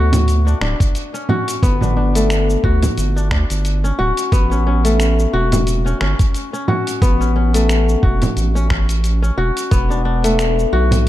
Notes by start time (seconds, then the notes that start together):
Already playing: D2 A3 B3 D4 F#4
0.13 closed hi-hat, frame drum, cabasa
0.28 closed hi-hat, cabasa
0.47 D4, cabasa
0.61 D1 D4, finger snap
0.80 kick, closed hi-hat, cabasa
0.95 closed hi-hat, cabasa
1.14 C#4, cabasa
1.29 F#4, frame drum
1.48 closed hi-hat, cabasa
1.63 G1 B3, kick, closed hi-hat, cabasa
1.81 D4, frame drum, cabasa
1.97 D4
2.15 A3, closed hi-hat, cabasa
2.30 finger snap, closed hi-hat, cabasa
2.50 cabasa
2.64 D2 F#4, kick
2.82 closed hi-hat, frame drum, cabasa
2.98 G1, closed hi-hat, cabasa
3.16 D4, cabasa
3.31 D2 D4, finger snap, kick
3.50 G1, closed hi-hat, cabasa
3.65 closed hi-hat, cabasa
3.84 C#4, cabasa
3.99 D1 F#4
4.17 closed hi-hat, cabasa
4.32 A1 B3, kick, closed hi-hat, cabasa
4.51 C#4, cabasa
4.67 C#4
4.85 A3, closed hi-hat, cabasa
5.00 finger snap, closed hi-hat, cabasa
5.19 cabasa
5.33 E1 F#4
5.52 closed hi-hat, frame drum, cabasa
5.67 closed hi-hat, cabasa
5.86 C#4, cabasa
6.01 G1 C#4, finger snap
6.19 kick, closed hi-hat, cabasa
6.34 closed hi-hat, cabasa
6.53 C#4, cabasa
6.68 F#4, frame drum
6.87 closed hi-hat, cabasa
7.02 A1 B3, kick, closed hi-hat, cabasa
7.21 C#4, cabasa
7.36 C#4
7.54 A3, closed hi-hat, cabasa
7.69 finger snap, closed hi-hat, cabasa
7.89 cabasa
8.03 E1 F#4, kick
8.22 closed hi-hat, frame drum, cabasa
8.37 A1, closed hi-hat, cabasa
8.55 C#4, cabasa
8.70 C#4, finger snap, kick
8.89 closed hi-hat, cabasa
9.04 closed hi-hat, cabasa
9.22 C#4, cabasa
9.38 E1 F#4
9.57 closed hi-hat, cabasa
9.71 E1 B3, kick, closed hi-hat, cabasa
9.90 D4, cabasa
10.05 D4
10.24 A3, closed hi-hat, cabasa
10.39 finger snap, closed hi-hat, cabasa
10.59 cabasa
10.73 B1 F#4
10.91 closed hi-hat, frame drum, cabasa